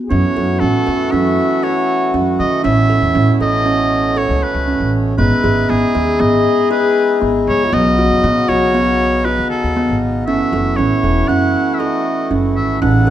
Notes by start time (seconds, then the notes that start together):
0.04 G#4
0.09 F#2 E3 A3 C#4 F#4 C#5
0.37 F#2 A4
0.60 A2 C#4 A4
0.87 E2 A4
1.11 F#2 C#4 E5
1.63 A4 C#5
2.14 F#2 C#4
2.40 D#3 D#5
2.64 A1 B2 C#4 E4 E5
2.90 A4
3.02 E2
3.15 A2 C#4
3.40 A1 A4 D#5
3.66 C#4
4.16 A4 C#5
4.29 C#2
4.43 B4
4.54 C#2
4.68 C#4
4.80 A1
5.18 G#1 G#3 B3 D#4 E4 G#4 B4
5.44 G#1 G#4
5.69 G#1 B3 G#4
5.95 D#2 G#4
6.20 G#1 B3 D#5
6.71 G#4 B4
7.21 G#1 B3
7.47 C#2 C#5
7.65 F4
7.72 B1 C#3 B3 D#4 F#4 D#5
7.98 F#4
8.10 F#2
8.24 B2 B3
8.49 B1 F#4 C#5
8.74 B3
9.25 F#4 B4
9.38 D#2
9.50 A4
9.64 D#2
9.76 B3
9.89 G#1
10.26 F#1 E3 A3 C#4 E4 F#4 E5
10.52 F#1 A4
10.76 A1 C#4 C#5
11.03 E1 A4
11.28 F#1 C#4 F#5
11.74 E5
11.79 A4 D#5
12.31 F#1 C#4
12.56 G#1 E5
12.82 A1 C#3 B3 C#4 D#4 A4 F#5